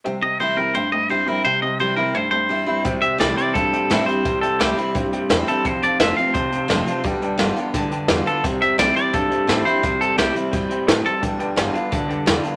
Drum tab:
HH |--------|--------|xxxxxxxx|xxxxxxxx|
SD |--------|--------|--o---o-|--o---o-|
BD |--------|--------|o---o---|o---o---|

HH |xxxxxxxx|xxxxxxxx|xxxxxxxx|xxxxxxxx|
SD |--o---o-|--o---o-|--o---o-|--o---o-|
BD |o---o---|o---o---|o---o---|o---o---|

HH |xxxxxxxx|
SD |--o---o-|
BD |o---o---|